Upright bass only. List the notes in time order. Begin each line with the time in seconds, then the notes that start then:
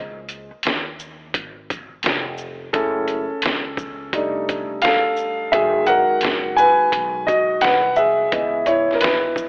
Already playing: C#2
0.51 muted upright bass stroke
0.65 D#2
1.34 G#1
2.04 F1
2.74 F#1
3.29 muted upright bass stroke
3.43 C#2
4.13 F1
4.83 D#1
5.53 E1
6.09 muted upright bass stroke
6.23 F#1
6.79 muted upright bass stroke
6.92 B1
7.62 C2
8.32 C#2
8.88 muted upright bass stroke
9.02 G#1